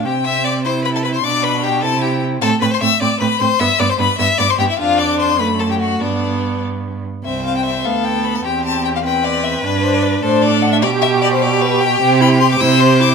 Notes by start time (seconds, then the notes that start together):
0.05 C3 C4 G4 G5
0.25 E5 E6
0.45 D5 D6
0.64 E4 C5 C6
0.84 B4 B5
0.94 A4 A5
1.03 B4 B5
1.13 C5 C6
1.23 B2 D4 D5 D6
1.43 B4 B5
1.63 G4 G5
1.82 C3 E4 A4 A5
2.02 G4 G5
2.41 A2 C4 A4 A5
2.61 A2 C4 B4 B5
2.71 C5 C6
2.81 A2 C4 E5 E6
3.00 A2 C4 D5 D6
3.20 A2 C4 B4 B5
3.40 A2 C4 C5 C6
3.60 G2 B3 E5 E6
3.79 G2 B3 D5 D6
3.89 C5 C6
3.99 G2 B3 B4 B5
4.19 G2 B3 E5 E6
4.38 G2 B3 D5 D6
4.49 C5 C6
4.58 G2 B3 G4 G5
4.69 E4 E5
4.79 F2 D4 F4 F5
4.98 D5 D6
5.19 C5 C6
5.39 F#2 A3 B4 B5
5.59 A4 A5
5.69 G4 G5
5.79 F#4 F#5
6.01 G2 B3 D4 D5
7.24 C2 C4 C5 E5
7.46 F5
7.57 G5
7.65 E5
7.85 D2 B3 A4 F5
8.05 G5
8.24 B5
8.36 A5
8.44 E2 C4 G4 G5
8.65 A5
8.85 G5
8.96 F5
9.04 C4 B4 G5
9.24 D5
9.44 E5
9.63 G2 D4 B4
9.84 C5
9.94 D5
10.03 B4
10.23 A2 D4 A4 C5
10.42 D5
10.62 F#5
10.73 E5
10.82 B2 G4 D5
11.02 E5
11.22 D5
11.33 C5
11.42 G4 D5
11.62 B4
11.81 G5
12.01 C3 G4
12.21 E4 B5
12.40 G4 C6
12.52 D6
12.60 C3 E4 C5 E6
12.80 G4 C6
13.00 E4 D6